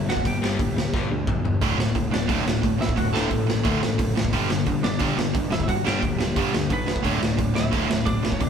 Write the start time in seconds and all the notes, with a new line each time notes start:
0.08 E1 G2 D3 F#4 F#5, snare
0.17 kick
0.25 G1 G2 D3 G4 G5, kick, open hi-hat
0.42 G1 G2 D3 G3, snare
0.59 D1 G2 D3, kick, open hi-hat
0.76 G2 D3, snare
0.94 G2 D3 G3, kick, snare
1.11 D2 G2 D3
1.27 B1 G2 D3, kick, mid tom
1.45 G1 G2 D3, floor tom
1.61 D1 D2 A2 D3, kick, open hi-hat
1.79 D1 D2 A2, snare
1.95 D1 D2 A2, kick, open hi-hat
2.12 D1 D2 A2 D4 D5, snare
2.29 D1 D2 A2 D3, kick, open hi-hat
2.46 D1 D2 A2, snare
2.63 D1 D2 A2, kick, open hi-hat
2.80 B1 D2 A2 E4 E5, snare
2.89 kick
2.97 D1 D2 A2 F#4 F#5, kick, open hi-hat
3.13 D1 D2 A2 D3 A4 A5, snare
3.31 A1 D2 A2, kick, open hi-hat
3.49 D2 A2, snare
3.64 D2 A2 D3, kick, open hi-hat
3.82 A1 D2 A2, snare
3.99 F#1 D2 A2, kick, open hi-hat
4.16 A1 D2 A2, snare
4.25 kick
4.33 G1 G2 D3 G3, kick, open hi-hat
4.50 G1 G2 D3, snare
4.66 G1 G2 D3, kick, open hi-hat
4.83 G1 G2 D3 D4 D5, snare
4.99 G1 G2 D3 G3, kick, open hi-hat
5.16 G1 G2 D3, snare
5.34 G1 G2 D3, kick, open hi-hat
5.51 E1 G2 D3 E4 E5, snare
5.60 E5, kick
5.68 G1 G2 D3 F#4 F#5, kick, open hi-hat
5.86 G1 G2 D3 G3 G4 G5, snare
6.02 D1 G2 D3, kick, open hi-hat
6.19 G2 D3, snare
6.36 G2 D3 G3, kick, open hi-hat
6.54 D2 G2 D3, snare
6.70 B1 G2 D3 B3 B4, kick, open hi-hat
6.87 E1 G2 D3, snare
6.96 kick
7.04 D1 D2 A2 D3 D4 D5, kick, open hi-hat
7.21 D1 D2 A2, snare
7.38 D1 D2 A2, kick, open hi-hat
7.44 C#5
7.55 D1 D2 A2 E4 E5, snare
7.72 D1 D2 A2 D3, kick, open hi-hat
7.89 D1 D2 A2, snare
8.06 D1 D2 A2 D4 D5, kick, open hi-hat
8.23 B1 D2 A2, snare
8.32 C#5, kick
8.40 D1 D2 A2 D4 D5, kick, open hi-hat